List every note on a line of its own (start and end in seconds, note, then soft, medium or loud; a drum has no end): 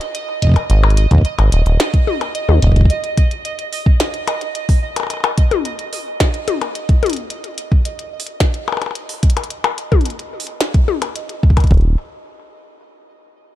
0.00 11.72 D#5 medium
0.00 closed hi-hat soft
0.15 closed hi-hat medium
0.42 kick soft
0.42 closed hi-hat loud
0.45 kick medium
0.47 kick medium
0.49 kick medium
0.51 kick medium
0.54 kick loud
0.54 closed hi-hat soft
0.54 percussion blips soft
0.70 1.07 G#1 loud
0.70 closed hi-hat medium
0.84 percussion blips medium
0.90 closed hi-hat soft
0.97 closed hi-hat medium
1.11 1.23 D#2 medium
1.11 kick loud
1.11 closed hi-hat soft
1.15 kick medium
1.18 kick medium
1.21 kick medium
1.21 closed hi-hat medium
1.39 1.50 G#1 medium
1.39 closed hi-hat soft
1.39 percussion blips medium
1.52 1.64 D#1 medium
1.52 closed hi-hat medium
1.66 1.78 D#1 medium
1.66 closed hi-hat soft
1.80 snare loud
1.80 closed hi-hat medium
1.94 kick loud
1.94 closed hi-hat soft
2.07 high tom medium
2.21 closed hi-hat soft
2.21 percussion blips soft
2.35 closed hi-hat medium
2.49 2.60 D#2 medium
2.49 high tom medium
2.62 2.85 D#1 medium
2.62 kick medium
2.62 closed hi-hat medium
2.67 kick medium
2.72 kick medium
2.76 kick medium
2.76 closed hi-hat soft
2.81 kick medium
2.85 kick loud
2.90 closed hi-hat medium
3.04 closed hi-hat soft
3.17 kick loud
3.17 closed hi-hat medium
3.31 closed hi-hat soft
3.45 closed hi-hat medium
3.59 closed hi-hat soft
3.73 open hi-hat medium
3.86 kick loud
4.00 snare loud
4.00 closed hi-hat medium
4.14 closed hi-hat soft
4.28 closed hi-hat medium
4.28 percussion blips soft
4.41 closed hi-hat soft
4.55 closed hi-hat medium
4.69 kick loud
4.69 open hi-hat medium
4.96 closed hi-hat medium
4.96 percussion blips soft
5.00 percussion blips soft
5.03 percussion blips soft
5.07 closed hi-hat medium
5.07 percussion blips soft
5.10 percussion blips soft
5.14 percussion blips soft
5.17 percussion blips soft
5.20 closed hi-hat soft
5.20 percussion blips soft
5.24 percussion blips medium
5.38 kick loud
5.38 closed hi-hat medium
5.51 closed hi-hat soft
5.51 high tom loud
5.65 closed hi-hat medium
5.79 closed hi-hat soft
5.93 open hi-hat medium
6.20 kick loud
6.20 snare loud
6.20 closed hi-hat medium
6.34 closed hi-hat soft
6.48 closed hi-hat medium
6.48 high tom medium
6.62 closed hi-hat soft
6.62 percussion blips soft
6.75 closed hi-hat medium
6.89 kick loud
6.89 closed hi-hat soft
7.03 closed hi-hat soft
7.03 high tom medium
7.06 closed hi-hat soft
7.10 closed hi-hat medium
7.13 closed hi-hat medium
7.17 closed hi-hat soft
7.30 closed hi-hat medium
7.44 closed hi-hat soft
7.58 closed hi-hat medium
7.72 kick medium
7.85 closed hi-hat medium
7.99 closed hi-hat soft
8.20 open hi-hat medium
8.27 closed hi-hat soft
8.40 kick loud
8.40 snare loud
8.40 closed hi-hat medium
8.54 closed hi-hat soft
8.68 percussion blips medium
8.72 percussion blips soft
8.77 percussion blips soft
8.82 closed hi-hat soft
8.82 percussion blips soft
8.86 percussion blips soft
8.91 percussion blips soft
8.95 closed hi-hat medium
9.09 open hi-hat medium
9.23 kick loud
9.23 closed hi-hat medium
9.30 closed hi-hat medium
9.37 closed hi-hat medium
9.37 percussion blips soft
9.44 closed hi-hat soft
9.50 closed hi-hat medium
9.64 closed hi-hat soft
9.64 percussion blips medium
9.78 closed hi-hat medium
9.92 kick loud
9.92 closed hi-hat soft
9.92 high tom loud
10.01 closed hi-hat soft
10.05 closed hi-hat medium
10.10 closed hi-hat soft
10.19 closed hi-hat soft
10.40 open hi-hat medium
10.47 closed hi-hat soft
10.61 snare loud
10.61 closed hi-hat medium
10.74 kick loud
10.74 closed hi-hat soft
10.88 high tom medium
11.02 closed hi-hat medium
11.02 percussion blips soft
11.16 closed hi-hat medium
11.29 closed hi-hat soft
11.43 kick loud
11.50 kick medium
11.57 kick medium
11.57 closed hi-hat soft
11.57 percussion blips soft
11.60 closed hi-hat soft
11.64 kick medium
11.64 closed hi-hat soft
11.67 closed hi-hat soft
11.71 11.96 D#1 medium
11.71 kick loud
11.71 closed hi-hat soft
11.74 closed hi-hat soft
11.78 closed hi-hat soft
11.81 closed hi-hat soft